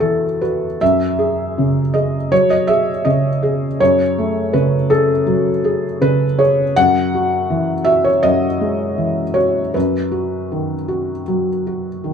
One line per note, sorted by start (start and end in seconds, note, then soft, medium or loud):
0.00 0.76 E2 medium
0.00 0.65 E3 soft
0.00 0.25 F#4 soft
0.00 0.41 A4 medium
0.00 0.40 B4 medium
0.41 0.81 F#4 soft
0.41 0.81 B4 medium
0.81 2.27 F#2 medium
0.81 1.94 E5 medium
1.19 1.79 G#4 medium
1.58 2.17 C#3 soft
1.94 2.53 G#4 soft
1.94 2.31 D#5 medium
2.32 2.90 F#3 soft
2.32 2.50 C#5 medium
2.50 2.68 D#5 medium
2.67 3.28 G#4 soft
2.67 3.05 E5 medium
3.05 3.65 C#3 soft
3.05 3.79 D#5 medium
3.43 4.02 G#4 medium
3.80 5.23 F#2 medium
3.80 4.53 C#5 medium
4.19 4.76 A3 medium
4.53 5.12 C#3 medium
4.53 4.90 B4 medium
4.90 5.49 G#4 medium
4.90 6.01 A4 medium
5.27 5.86 F#3 medium
5.64 6.23 G#4 medium
6.01 6.62 C#3 medium
6.01 6.39 B4 medium
6.39 6.77 G#4 medium
6.39 6.77 C#5 medium
6.76 8.20 F#2 medium
6.76 7.87 F#5 loud
7.14 7.73 F#4 medium
7.50 8.09 E3 soft
7.85 8.45 F#4 soft
7.85 8.04 E5 medium
8.04 8.24 C#5 medium
8.23 9.70 F#2 medium
8.23 9.36 D#5 medium
8.61 9.21 G#3 soft
8.98 9.59 E3 soft
9.34 9.74 F#4 soft
9.34 9.73 C#5 medium
9.74 11.22 F#2 medium
9.74 12.13 B4 medium
10.12 10.73 F#4 soft
10.52 11.12 D#3 soft
10.88 11.49 F#4 soft
11.28 11.88 F#3 soft
11.67 12.13 F#4 soft
12.04 12.13 D#3 soft